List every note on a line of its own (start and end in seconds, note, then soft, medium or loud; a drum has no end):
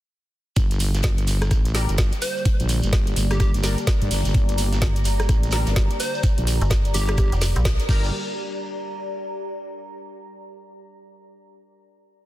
0.56 1.02 G1 loud
0.56 7.85 D3 medium
0.56 7.85 G3 medium
0.56 7.85 A#3 medium
0.56 7.88 G4 medium
0.56 kick loud
0.56 closed hi-hat medium
0.56 shekere medium
0.71 closed hi-hat medium
0.71 shekere soft
0.80 closed hi-hat medium
0.80 open hi-hat loud
0.80 shekere medium
0.94 snare medium
0.94 closed hi-hat soft
0.94 shekere soft
1.03 1.50 G1 medium
1.03 kick loud
1.03 snare loud
1.03 closed hi-hat medium
1.03 shekere medium
1.18 closed hi-hat medium
1.18 shekere soft
1.22 7.89 D5 medium
1.27 snare medium
1.27 closed hi-hat medium
1.27 open hi-hat loud
1.27 shekere medium
1.42 cross-stick medium
1.42 snare soft
1.42 closed hi-hat soft
1.42 shekere soft
1.51 1.87 A1 loud
1.51 kick loud
1.51 cross-stick medium
1.51 closed hi-hat medium
1.51 shekere soft
1.65 closed hi-hat medium
1.65 shekere soft
1.75 1.89 G3 medium
1.75 1.89 D4 medium
1.75 1.89 A#4 medium
1.75 snare medium
1.75 closed hi-hat medium
1.75 open hi-hat loud
1.75 shekere medium
1.89 2.10 G1 medium
1.89 closed hi-hat soft
1.89 shekere soft
1.98 kick loud
1.98 snare loud
1.98 closed hi-hat medium
1.98 shekere soft
2.12 snare soft
2.12 closed hi-hat medium
2.12 shekere soft
2.21 2.43 C5 medium
2.21 snare medium
2.21 closed hi-hat medium
2.21 open hi-hat loud
2.21 shekere loud
2.37 7.89 A#5 medium
2.37 shekere soft
2.45 kick loud
2.45 closed hi-hat medium
2.45 closed hi-hat loud
2.45 shekere soft
2.60 2.81 A#1 medium
2.60 closed hi-hat medium
2.60 shekere soft
2.69 closed hi-hat medium
2.69 open hi-hat loud
2.69 shekere medium
2.82 3.15 G1 loud
2.82 closed hi-hat soft
2.82 shekere soft
2.93 kick loud
2.93 snare loud
2.93 closed hi-hat medium
2.93 closed hi-hat loud
3.07 closed hi-hat medium
3.07 shekere soft
3.16 3.52 G1 loud
3.16 closed hi-hat medium
3.16 open hi-hat loud
3.16 shekere medium
3.30 3.37 G4 medium
3.30 cross-stick medium
3.30 snare medium
3.30 closed hi-hat soft
3.30 shekere soft
3.40 3.49 G4 medium
3.40 kick loud
3.40 cross-stick medium
3.40 closed hi-hat medium
3.40 shekere medium
3.54 3.76 G1 loud
3.54 snare soft
3.54 closed hi-hat medium
3.54 shekere soft
3.63 3.78 G3 medium
3.63 3.78 D4 medium
3.63 3.78 A#4 medium
3.63 snare medium
3.63 snare soft
3.63 closed hi-hat medium
3.63 open hi-hat loud
3.63 shekere loud
3.78 closed hi-hat soft
3.78 shekere soft
3.87 kick loud
3.87 snare loud
3.87 closed hi-hat medium
3.87 shekere medium
4.02 4.09 G2 loud
4.02 closed hi-hat medium
4.02 shekere soft
4.11 4.23 G1 medium
4.11 snare medium
4.11 open hi-hat loud
4.11 open hi-hat medium
4.11 shekere medium
4.25 4.33 G1 medium
4.25 closed hi-hat soft
4.25 shekere soft
4.34 4.80 G1 loud
4.34 kick loud
4.34 closed hi-hat medium
4.49 closed hi-hat medium
4.49 shekere soft
4.58 closed hi-hat medium
4.58 open hi-hat loud
4.58 shekere medium
4.72 snare medium
4.72 closed hi-hat soft
4.72 shekere soft
4.82 5.28 G1 loud
4.82 kick loud
4.82 snare loud
4.82 closed hi-hat medium
4.82 closed hi-hat loud
4.96 closed hi-hat medium
4.96 shekere soft
5.05 snare medium
5.05 closed hi-hat medium
5.05 open hi-hat loud
5.05 shekere loud
5.20 cross-stick medium
5.20 snare soft
5.20 closed hi-hat soft
5.20 shekere soft
5.29 5.65 A1 loud
5.29 kick loud
5.29 cross-stick medium
5.29 closed hi-hat medium
5.29 shekere medium
5.43 closed hi-hat medium
5.43 shekere soft
5.51 5.67 G3 medium
5.51 5.67 D4 medium
5.51 5.67 A#4 medium
5.51 snare medium
5.51 closed hi-hat medium
5.51 open hi-hat loud
5.51 shekere medium
5.67 5.88 G1 loud
5.67 snare loud
5.67 closed hi-hat medium
5.67 closed hi-hat soft
5.67 shekere soft
5.76 kick loud
5.76 snare loud
5.76 closed hi-hat medium
5.76 shekere medium
5.90 snare soft
5.90 closed hi-hat medium
5.90 shekere soft
6.00 6.21 C5 loud
6.00 snare medium
6.00 closed hi-hat medium
6.00 open hi-hat loud
6.00 shekere medium
6.14 shekere soft
6.23 kick loud
6.23 closed hi-hat medium
6.23 shekere medium
6.38 6.59 A#1 medium
6.38 closed hi-hat medium
6.38 shekere soft
6.47 closed hi-hat medium
6.47 open hi-hat loud
6.47 shekere loud
6.61 6.93 G1 loud
6.61 closed hi-hat soft
6.61 shekere soft
6.70 kick loud
6.70 snare loud
6.70 closed hi-hat medium
6.70 shekere medium
6.85 closed hi-hat medium
6.85 shekere soft
6.94 7.30 G1 loud
6.94 7.32 G4 medium
6.94 closed hi-hat medium
6.94 open hi-hat loud
6.94 shekere medium
7.08 cross-stick medium
7.08 snare medium
7.08 closed hi-hat soft
7.08 shekere soft
7.17 kick loud
7.17 cross-stick medium
7.17 closed hi-hat medium
7.17 shekere medium
7.32 7.54 F1 loud
7.32 snare soft
7.32 closed hi-hat medium
7.32 shekere soft
7.41 snare medium
7.41 closed hi-hat medium
7.41 open hi-hat loud
7.41 shekere loud
7.56 7.77 A#1 loud
7.56 closed hi-hat soft
7.56 shekere soft
7.65 kick loud
7.65 snare loud
7.65 closed hi-hat medium
7.65 shekere medium
7.79 closed hi-hat soft
7.79 shekere soft
7.89 8.11 G1 loud
7.89 8.07 G3 medium
7.89 8.11 G3 medium
7.89 8.07 D4 medium
7.89 8.11 G4 medium
7.89 9.74 G4 medium
7.89 8.07 A#4 medium
7.89 8.11 A#4 medium
7.89 8.11 D5 medium
7.89 kick loud
7.89 crash medium
7.89 shekere medium
7.97 9.74 D5 medium
8.04 shekere soft
8.29 9.97 A#5 medium